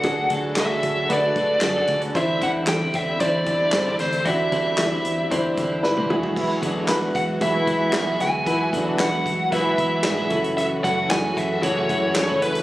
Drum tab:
CC |----------------|----------------|----------------|x---------------|
HH |x-x-x-x-x-x-x-xx|x-x-x-x-x-x-x-xx|x-x-x-x-x-x-----|--x-x-x-x-x-x-x-|
CP |----x-------x---|----x-------x---|----x-----------|----x-------x---|
SD |----o-------o---|----o-------o-o-|----o-------o---|----o-------o-o-|
T1 |----------------|----------------|-------------o--|----------------|
T2 |----------------|----------------|--------------o-|----------------|
FT |----------------|----------------|---------------o|----------------|
BD |o-o---o-o-o---o-|o-o---o-o-o-----|o-o-----o-o-----|o-o---o-o-o-----|

CC |----------------|----------------|
HH |x-x-x-x-x-x-x-xx|x-x-x-x-x-x-x-xx|
CP |----x-------x---|----x-------x---|
SD |----o-------o---|----o-------o---|
T1 |----------------|----------------|
T2 |----------------|----------------|
FT |----------------|----------------|
BD |o-o---o-o-o---o-|--o---o-o-o-----|